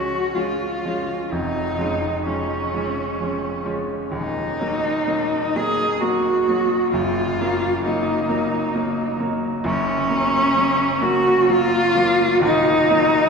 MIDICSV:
0, 0, Header, 1, 3, 480
1, 0, Start_track
1, 0, Tempo, 947867
1, 662, Time_signature, 3, 2, 24, 8
1, 3050, Tempo, 909091
1, 5450, Tempo, 936037
1, 6846, End_track
2, 0, Start_track
2, 0, Title_t, "Cello"
2, 0, Program_c, 0, 42
2, 0, Note_on_c, 0, 66, 81
2, 177, Note_on_c, 0, 65, 73
2, 184, Note_off_c, 0, 66, 0
2, 665, Note_on_c, 0, 63, 81
2, 673, Note_off_c, 0, 65, 0
2, 1144, Note_off_c, 0, 63, 0
2, 1146, Note_on_c, 0, 61, 70
2, 1842, Note_off_c, 0, 61, 0
2, 2093, Note_on_c, 0, 63, 89
2, 2815, Note_on_c, 0, 68, 92
2, 2823, Note_off_c, 0, 63, 0
2, 3042, Note_on_c, 0, 66, 83
2, 3050, Note_off_c, 0, 68, 0
2, 3524, Note_off_c, 0, 66, 0
2, 3527, Note_on_c, 0, 65, 94
2, 4001, Note_off_c, 0, 65, 0
2, 4014, Note_on_c, 0, 63, 83
2, 4712, Note_off_c, 0, 63, 0
2, 4968, Note_on_c, 0, 61, 112
2, 5687, Note_on_c, 0, 66, 104
2, 5695, Note_off_c, 0, 61, 0
2, 5926, Note_on_c, 0, 65, 115
2, 5934, Note_off_c, 0, 66, 0
2, 6403, Note_off_c, 0, 65, 0
2, 6406, Note_on_c, 0, 63, 121
2, 6846, Note_off_c, 0, 63, 0
2, 6846, End_track
3, 0, Start_track
3, 0, Title_t, "Grand piano"
3, 0, Program_c, 1, 0
3, 0, Control_c, 1, 64, 127
3, 0, Note_on_c, 1, 37, 48
3, 0, Note_on_c, 1, 53, 36
3, 0, Note_on_c, 1, 56, 35
3, 0, Note_on_c, 1, 61, 42
3, 158, Note_off_c, 1, 53, 0
3, 158, Note_off_c, 1, 56, 0
3, 159, Note_off_c, 1, 61, 0
3, 173, Note_on_c, 1, 53, 33
3, 175, Note_on_c, 1, 56, 37
3, 179, Note_on_c, 1, 61, 44
3, 399, Note_off_c, 1, 53, 0
3, 400, Note_off_c, 1, 56, 0
3, 402, Note_off_c, 1, 61, 0
3, 432, Note_on_c, 1, 53, 37
3, 432, Note_on_c, 1, 56, 41
3, 435, Note_on_c, 1, 61, 45
3, 648, Note_off_c, 1, 53, 0
3, 648, Note_off_c, 1, 56, 0
3, 649, Note_off_c, 1, 61, 0
3, 667, Note_on_c, 1, 29, 53
3, 669, Note_on_c, 1, 41, 57
3, 671, Control_c, 1, 64, 0
3, 675, Note_off_c, 1, 37, 0
3, 765, Control_c, 1, 64, 127
3, 897, Note_off_c, 1, 29, 0
3, 899, Note_off_c, 1, 41, 0
3, 904, Note_on_c, 1, 53, 43
3, 905, Note_on_c, 1, 56, 37
3, 909, Note_on_c, 1, 61, 44
3, 1123, Note_off_c, 1, 53, 0
3, 1123, Note_off_c, 1, 56, 0
3, 1125, Note_off_c, 1, 61, 0
3, 1146, Note_on_c, 1, 53, 40
3, 1147, Note_on_c, 1, 61, 40
3, 1148, Note_on_c, 1, 56, 37
3, 1364, Note_off_c, 1, 53, 0
3, 1365, Note_off_c, 1, 56, 0
3, 1365, Note_off_c, 1, 61, 0
3, 1386, Note_on_c, 1, 53, 40
3, 1390, Note_on_c, 1, 56, 43
3, 1390, Note_on_c, 1, 61, 43
3, 1602, Note_off_c, 1, 53, 0
3, 1604, Note_off_c, 1, 56, 0
3, 1604, Note_off_c, 1, 61, 0
3, 1622, Note_on_c, 1, 53, 39
3, 1625, Note_on_c, 1, 56, 36
3, 1626, Note_on_c, 1, 61, 44
3, 1835, Note_off_c, 1, 53, 0
3, 1836, Note_off_c, 1, 56, 0
3, 1837, Note_off_c, 1, 61, 0
3, 1851, Note_on_c, 1, 53, 42
3, 1852, Note_on_c, 1, 56, 45
3, 1854, Note_on_c, 1, 61, 49
3, 2069, Note_off_c, 1, 53, 0
3, 2069, Note_off_c, 1, 56, 0
3, 2070, Note_off_c, 1, 61, 0
3, 2079, Note_on_c, 1, 27, 52
3, 2083, Note_on_c, 1, 39, 59
3, 2100, Control_c, 1, 64, 0
3, 2182, Control_c, 1, 64, 127
3, 2319, Note_off_c, 1, 27, 0
3, 2321, Note_off_c, 1, 39, 0
3, 2329, Note_on_c, 1, 54, 43
3, 2335, Note_on_c, 1, 58, 49
3, 2553, Note_off_c, 1, 54, 0
3, 2555, Note_off_c, 1, 58, 0
3, 2564, Note_on_c, 1, 54, 41
3, 2567, Note_on_c, 1, 58, 48
3, 2789, Note_off_c, 1, 54, 0
3, 2790, Note_off_c, 1, 58, 0
3, 2814, Note_on_c, 1, 54, 45
3, 2815, Note_on_c, 1, 58, 44
3, 3030, Note_off_c, 1, 54, 0
3, 3031, Note_off_c, 1, 58, 0
3, 3046, Note_on_c, 1, 54, 42
3, 3048, Note_on_c, 1, 58, 48
3, 3272, Note_off_c, 1, 54, 0
3, 3274, Note_off_c, 1, 58, 0
3, 3295, Note_on_c, 1, 54, 48
3, 3295, Note_on_c, 1, 58, 47
3, 3518, Note_off_c, 1, 54, 0
3, 3518, Note_off_c, 1, 58, 0
3, 3527, Note_on_c, 1, 30, 63
3, 3532, Note_on_c, 1, 42, 66
3, 3548, Control_c, 1, 64, 0
3, 3622, Control_c, 1, 64, 127
3, 3767, Note_off_c, 1, 30, 0
3, 3770, Note_off_c, 1, 42, 0
3, 3781, Note_on_c, 1, 54, 54
3, 3785, Note_on_c, 1, 58, 53
3, 3996, Note_off_c, 1, 54, 0
3, 3998, Note_off_c, 1, 58, 0
3, 4020, Note_on_c, 1, 58, 51
3, 4022, Note_on_c, 1, 54, 47
3, 4229, Note_off_c, 1, 58, 0
3, 4230, Note_off_c, 1, 54, 0
3, 4246, Note_on_c, 1, 54, 46
3, 4247, Note_on_c, 1, 58, 58
3, 4462, Note_off_c, 1, 54, 0
3, 4462, Note_off_c, 1, 58, 0
3, 4490, Note_on_c, 1, 58, 54
3, 4491, Note_on_c, 1, 54, 44
3, 4709, Note_off_c, 1, 58, 0
3, 4710, Note_off_c, 1, 54, 0
3, 4727, Note_on_c, 1, 54, 50
3, 4728, Note_on_c, 1, 58, 51
3, 4950, Note_off_c, 1, 54, 0
3, 4951, Note_off_c, 1, 58, 0
3, 4960, Note_on_c, 1, 30, 77
3, 4969, Note_on_c, 1, 42, 74
3, 4981, Control_c, 1, 64, 0
3, 5064, Control_c, 1, 64, 127
3, 5199, Note_off_c, 1, 30, 0
3, 5203, Note_on_c, 1, 54, 53
3, 5203, Note_on_c, 1, 58, 61
3, 5204, Note_off_c, 1, 42, 0
3, 5425, Note_off_c, 1, 58, 0
3, 5426, Note_off_c, 1, 54, 0
3, 5450, Note_on_c, 1, 54, 51
3, 5451, Note_on_c, 1, 58, 51
3, 5664, Note_off_c, 1, 54, 0
3, 5664, Note_off_c, 1, 58, 0
3, 5679, Note_on_c, 1, 54, 55
3, 5679, Note_on_c, 1, 58, 57
3, 5900, Note_off_c, 1, 58, 0
3, 5901, Note_off_c, 1, 54, 0
3, 5919, Note_on_c, 1, 54, 57
3, 5921, Note_on_c, 1, 58, 50
3, 6144, Note_off_c, 1, 54, 0
3, 6145, Note_off_c, 1, 58, 0
3, 6158, Note_on_c, 1, 54, 50
3, 6159, Note_on_c, 1, 58, 62
3, 6382, Note_off_c, 1, 54, 0
3, 6382, Note_off_c, 1, 58, 0
3, 6389, Note_on_c, 1, 27, 69
3, 6396, Note_on_c, 1, 39, 76
3, 6415, Control_c, 1, 64, 0
3, 6488, Control_c, 1, 64, 127
3, 6630, Note_off_c, 1, 27, 0
3, 6633, Note_off_c, 1, 39, 0
3, 6645, Note_on_c, 1, 54, 57
3, 6648, Note_on_c, 1, 58, 57
3, 6648, Note_on_c, 1, 63, 65
3, 6846, Note_off_c, 1, 54, 0
3, 6846, Note_off_c, 1, 58, 0
3, 6846, Note_off_c, 1, 63, 0
3, 6846, End_track
0, 0, End_of_file